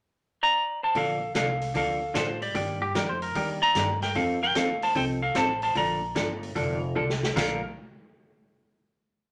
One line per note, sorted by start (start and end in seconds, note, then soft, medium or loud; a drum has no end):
0.43 0.80 D5 medium
0.43 0.83 A#5 loud
0.83 0.95 C5 medium
0.83 0.96 A5 medium
0.95 1.34 A#1 medium
0.95 1.18 D3 medium
0.95 1.18 F3 medium
0.95 1.18 A#3 medium
0.95 1.18 D4 medium
0.95 1.18 A4 medium
0.95 1.33 A4 medium
0.95 1.35 F5 loud
0.95 kick soft
0.95 open hi-hat soft
1.35 1.74 C2 medium
1.35 1.47 D3 medium
1.35 1.47 F3 medium
1.35 1.47 A#3 medium
1.35 1.47 D4 medium
1.35 1.73 A4 medium
1.35 1.47 A4 medium
1.35 1.73 F5 medium
1.35 snare medium
1.35 closed hi-hat medium
1.61 open hi-hat soft
1.74 2.14 D2 medium
1.74 1.97 D3 medium
1.74 1.98 F3 medium
1.74 1.98 A#3 medium
1.74 1.98 D4 medium
1.74 1.98 A4 medium
1.74 2.13 A4 medium
1.74 2.17 F5 medium
1.74 kick soft
1.74 open hi-hat soft
2.14 2.54 A2 loud
2.14 2.27 D3 medium
2.14 2.27 F3 medium
2.14 2.27 A#3 medium
2.14 2.27 D4 medium
2.14 2.40 F4 medium
2.14 2.27 A4 medium
2.14 2.42 C5 medium
2.14 snare medium
2.14 closed hi-hat medium
2.42 2.79 G4 medium
2.42 2.79 D5 medium
2.42 open hi-hat soft
2.54 2.94 G2 medium
2.54 2.77 D#3 medium
2.54 2.78 G3 medium
2.54 2.78 A#3 medium
2.54 2.78 D4 medium
2.54 2.78 G4 medium
2.54 kick soft
2.54 open hi-hat soft
2.82 2.95 G4 loud
2.95 3.34 F2 medium
2.95 3.07 D#3 medium
2.95 3.07 G3 medium
2.95 3.07 A#3 medium
2.95 3.08 D4 medium
2.95 3.08 G4 medium
2.95 3.09 A#4 medium
2.95 snare medium
2.95 closed hi-hat medium
3.09 3.22 C5 medium
3.22 3.48 A#4 medium
3.22 open hi-hat soft
3.35 3.74 D#2 medium
3.35 3.58 D#3 medium
3.35 3.58 G3 medium
3.35 3.58 A#3 medium
3.35 3.58 D4 medium
3.35 3.58 G4 medium
3.35 kick soft
3.35 open hi-hat medium
3.62 3.99 D5 medium
3.62 4.02 A#5 loud
3.75 4.14 G2 medium
3.75 3.87 D#3 medium
3.75 3.88 G3 medium
3.75 3.88 A#3 medium
3.75 3.88 D4 medium
3.75 3.88 G4 medium
3.75 snare medium
3.75 closed hi-hat medium
4.02 4.15 A#4 medium
4.02 4.16 G5 medium
4.02 snare soft
4.02 open hi-hat soft
4.15 4.54 F2 medium
4.15 4.38 F3 medium
4.15 4.38 C4 soft
4.15 4.38 D#4 medium
4.15 4.40 A4 medium
4.15 4.39 A4 medium
4.15 4.40 F5 medium
4.15 kick soft
4.15 open hi-hat soft
4.43 4.55 A#4 medium
4.43 4.56 G5 medium
4.55 4.94 D#2 medium
4.55 4.67 F3 medium
4.55 4.67 C4 medium
4.55 4.68 D#4 medium
4.55 4.68 A4 medium
4.55 4.81 A4 medium
4.55 4.84 F5 medium
4.55 snare medium
4.55 closed hi-hat medium
4.82 4.95 C5 medium
4.82 4.96 A5 loud
4.82 open hi-hat soft
4.95 5.34 C2 medium
4.95 5.18 F3 medium
4.95 5.18 C4 medium
4.95 5.18 D#4 medium
4.95 5.18 A4 medium
4.95 5.04 C5 medium
4.95 5.04 G5 medium
4.95 kick soft
4.95 open hi-hat soft
5.22 5.35 A4 medium
5.22 5.36 F5 medium
5.35 5.74 A1 medium
5.35 5.47 F3 medium
5.35 5.48 C4 medium
5.35 5.48 D#4 medium
5.35 5.48 A4 medium
5.35 5.61 C5 medium
5.35 5.61 A5 medium
5.35 snare medium
5.35 closed hi-hat medium
5.62 5.75 C5 medium
5.62 5.76 A5 medium
5.62 open hi-hat soft
5.75 6.14 A#1 medium
5.75 5.98 D3 medium
5.75 5.98 F3 medium
5.75 5.98 A#3 medium
5.75 5.98 D4 medium
5.75 5.99 A4 medium
5.75 6.93 D5 medium
5.75 6.93 A#5 medium
5.75 kick soft
5.75 open hi-hat soft
6.15 6.54 G1 medium
6.15 6.27 D3 medium
6.15 6.28 F3 medium
6.15 6.28 A#3 medium
6.15 6.28 D4 medium
6.15 6.28 A4 medium
6.15 snare medium
6.15 closed hi-hat medium
6.43 open hi-hat soft
6.55 6.95 F1 medium
6.55 6.78 D3 medium
6.55 6.78 F3 medium
6.55 6.78 A#3 medium
6.55 6.79 D4 medium
6.55 6.79 A4 medium
6.55 kick soft
6.55 open hi-hat soft
6.95 7.35 C2 medium
6.95 7.08 D3 medium
6.95 7.08 F3 medium
6.95 7.08 A#3 medium
6.95 7.08 D4 medium
6.95 7.08 A4 medium
7.10 snare medium
7.23 snare medium
7.36 7.61 A#1 loud
7.36 7.57 A#2 medium
7.36 7.57 D3 medium
7.36 7.58 F3 medium
7.36 7.58 A#3 medium
7.36 7.58 D4 medium
7.36 7.58 A4 medium
7.36 7.61 A#4 medium
7.36 7.61 F5 medium
7.36 kick loud
7.36 snare medium
7.36 crash medium